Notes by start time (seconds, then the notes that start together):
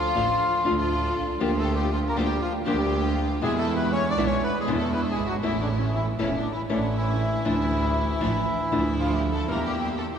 Already playing: D2 F3 D4 F4 A4
0.15 A1 D3 A3 D4 F4 A4
0.64 D2 D3 A3 D4 F4 A4
0.78 F3 F4
1.16 C2
1.40 D2 D3 F3 A#3 D4 F4 G4
1.59 A3 A4
1.75 G3 G4
1.92 F3 F4
2.09 A#3 A#4
2.16 D2 D3 F3 A#3 D4 F4 G4
2.24 G3 G4
2.41 F3 F4
2.66 D2 D3 F3 G3 A#3 D4 F4 G4
3.41 E2 B2 D3 G#3 B3 D4 E4 G#4
3.58 A3 A4
3.76 B3 B4
3.92 C#4 C#5
4.09 D4 D5
4.17 B1 B2 D3 G#3 B3 D4 E4
4.25 C#4 C#5
4.42 B3 B4
4.59 G#3 G#4
4.67 E2 B2 D3 G#3 B3 D4 E4
4.76 A3 A4
4.93 B3 B4
5.10 G#3 G#4
5.19 G1
5.26 F#3 F#4
5.43 A1 E3 A3 C#4 E4
5.59 D3 D4
5.77 C#3 C#4
5.94 E3 E4
6.19 E1 C#3 E3 A3 C#4 E4
6.36 D3 D4
6.53 E3 E4
6.69 A1 D3 E3 A3 C#4 D4 E4
6.96 E3 E4
7.45 D2 D3 E3 F3 A3 D4 E4
8.21 A1 D3 F3 A3 D4 E4
8.72 D2 D3 F3 A3 D4 E4
8.99 F3 F4
9.14 G3 G4
9.31 A3 A4
9.47 E2 E3 G3 A#3 E4 G4 A#4
9.65 G3 G4
9.80 G3 G4
9.98 A3 A4
10.14 G4